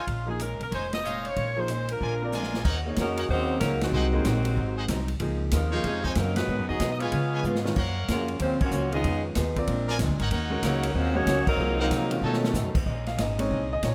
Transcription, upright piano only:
0.26 F3 A#3 D#4 G#4
1.57 F3 A#3 D#4 G#4
2.22 C4 F4 A#4 D5
2.86 A#3 D#4 G#4 C#5
4.13 A#3 D#4 G#4 C5
5.20 F3 A#3 D#4 G#4
5.72 F3 A#3 D#4 G#4
7.64 D#3 G#3 C#4 F4
8.93 D#3 G#3 C#4 F4
9.57 C4 F4 A#4 D5
10.50 G#3 C#4 F#4 A#4
11.15 G#3 C#4 F#4 C#5
11.58 F3 A#3 D#4 G#4
12.10 D#3 G#3 C#4 F4
13.07 F5
13.20 D#5
13.38 G#3 C4 C#4 D#4 C#5
13.73 D#5
13.84 C#5

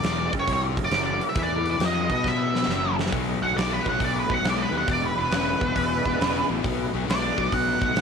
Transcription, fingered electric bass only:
0.04 E1
0.34 F#1
0.48 C2
0.78 F#1
0.91 F#1
1.36 E2
1.79 F2
2.10 B2
2.67 F#1
3.13 B1
3.42 B1
3.56 B1
3.87 B1
4.00 B1
4.30 B1
4.42 B1
4.72 D#2
4.88 E1
5.17 E1
5.31 E1
5.61 E1
5.76 E1
6.06 E1
6.19 E1
6.50 A1
6.65 B1
6.93 B1
7.08 B1
7.38 B1
7.52 B1
7.82 B1
7.95 B1

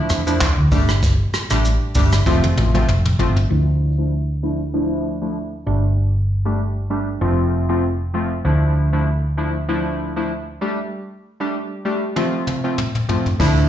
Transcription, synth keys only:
Already playing: F3 A3 D4 E4
0.27 F3 A3 D4 E4
0.72 G3 A3 D4 G4
1.50 G3 A3 D4 G4
1.95 G3 A3 D4 G4
2.26 F3 A3 C4 F4
2.74 F3 A3 C4 F4
3.19 F3 A3 C4 F4
3.50 F3 A3 D4 E4
3.98 F3 A3 D4 E4
4.43 F3 A3 D4 E4
4.74 F3 A3 D4 E4
5.22 F3 A3 D4 E4
5.66 G3 A3 D4 G4
6.45 G3 A3 D4 G4
6.90 G3 A3 D4 G4
7.21 F3 A3 C4 F4
7.69 F3 A3 C4 F4
8.14 F3 A3 C4 F4
8.45 F3 A3 D4 E4
8.93 F3 A3 D4 E4
9.37 F3 A3 D4 E4
9.68 F3 A3 D4 E4
10.16 F3 A3 D4 E4
10.61 G3 A3 D4 G4
11.40 G3 A3 D4 G4
11.85 G3 A3 D4 G4
12.16 F3 A3 C4 F4
12.64 F3 A3 C4 F4
13.09 F3 A3 C4 F4
13.39 F3 A3 D4 E4

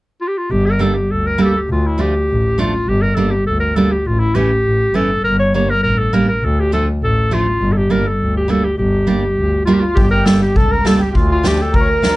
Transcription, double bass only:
0.51 G1
1.10 D2
1.69 D2
2.29 A1
2.88 G1
3.47 D2
4.06 A1
4.66 A1
4.95 G1
5.24 G1
5.84 A1
6.43 D2
7.02 A1
7.61 G1
8.21 D2
8.79 G1
9.38 D2
9.97 G1
10.56 C#2
11.16 D2
11.74 D2

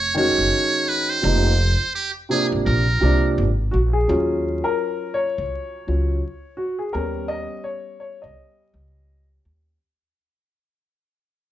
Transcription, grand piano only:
0.14 D#3 G#3 C#4 F#4
1.22 C3 F3 A#3 D#4
2.29 C3 F3 A#3 D4
3.00 C3 F3 A#3 D4
3.71 F#4
3.93 G#4
4.08 F#3 C#4 F4
4.64 A#4
5.14 C#5
5.87 F#3 C#4 F4
6.57 F#4
6.79 G#4
6.93 G3 B3 C#4 A#4
7.28 D#5
7.64 C#5
8.00 C#5
8.22 D#5

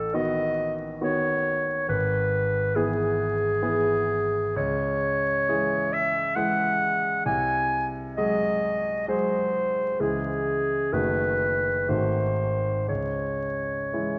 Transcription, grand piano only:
Already playing: A1
0.14 D#3 B3 F#4
1.01 D#3 B3 F#4
1.89 G#1
2.76 E3 B3 G#4
3.62 E3 B3 G#4
4.56 C#2
5.48 E3 G#3 G#4
6.36 E3 G#3 G#4
7.26 C2
8.18 F#3 G#3 G#4
9.08 F#3 G#3 G#4
10.00 C#2 E3 G#3 G#4
10.92 F#1 D#3 A3 F#4
11.88 G#1 D#3 A3 F#4
12.88 C#2
13.93 E3 G#3 E4

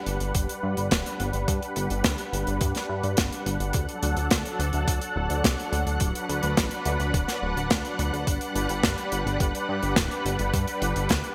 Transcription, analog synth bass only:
0.07 G1
0.21 G1
0.35 G1
0.63 G2
0.77 G1
0.91 D1
1.20 G1
1.34 G1
1.48 G2
1.76 G1
1.91 G1
2.05 D2
2.33 G1
2.47 G1
2.61 G2
2.89 G2
3.04 G2
3.18 G1
3.46 G1
3.60 G1
3.74 D2
4.03 D2
4.17 D2
4.31 D2
4.59 D2
4.74 D2
4.88 D2
5.16 D1
5.30 D2
5.44 C2
5.73 D2
5.87 D2
6.01 D1
6.29 D2
6.43 D2
6.57 A1
6.86 D2
7.00 D2
7.14 D1
7.42 D1
7.57 D1
7.71 D2
7.99 D2
8.13 D2
8.27 G1
8.56 G1
8.70 G1
8.84 G1
9.12 G1
9.26 G1
9.40 G1
9.69 G2
9.83 G1
10.25 G1
10.40 G1
10.54 G2
10.82 G1
10.96 G1
11.10 D2

